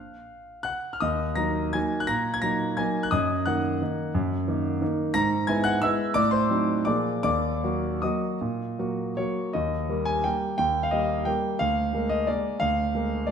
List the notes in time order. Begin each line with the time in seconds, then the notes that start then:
Already playing: F5 F6
0.63 F#5 F#6
0.93 F6
1.00 D#2 D#5 D#6
1.36 F#3 A#3 D#4 A#5 A#6
1.73 F#3 A#3 D#4 G#5 G#6
2.00 F#6
2.07 A#2 A#5 A#6
2.34 G#6
2.42 F#3 A#3 D#4 A#5 A#6
2.77 F#3 A#3 D#4 G#5 G#6
3.03 F#6
3.11 F#2 D#5 D#6
3.46 D#3 A#3 D#4 F#5 F#6
3.82 D#3 A#3 D#4
4.15 F#2
4.48 D#3 A#3 D#4
4.82 D#3 A#3 D#4
5.14 G#2 A#5 A#6
5.47 G#3 B3 E4 G#5 G#6
5.64 F#5 F#6
5.82 G#3 B3 E4 E5 E6
6.14 A2 D5 D6
6.31 C5 C6
6.49 F#3 C4 D#4
6.85 A#2 F3 A#3 G#4 D5 D6
7.23 D#2 D5 D6
7.63 F#3 A#3 F#4
8.02 F#3 A#3 F#4 D#5 D#6
8.41 A#2
8.79 F#3 A#3 F#4
9.17 F#3 A#3 F#4 C#5
9.53 D#2 D#5
9.89 G3 A#3 A#4
10.05 G#5
10.24 G3 A#3 A#4 G5
10.58 D#2 G5
10.83 F5
10.91 G3 A#3 A#4 D#5
11.25 G3 A#3 A#4 G5
11.59 D2 F5
11.93 G#3 A#3 A#4
12.10 D#5
12.27 G#3 A#3 A#4 D5
12.60 D2 F5
12.95 G#3 A#3 A#4
13.27 G#3 A#3 D5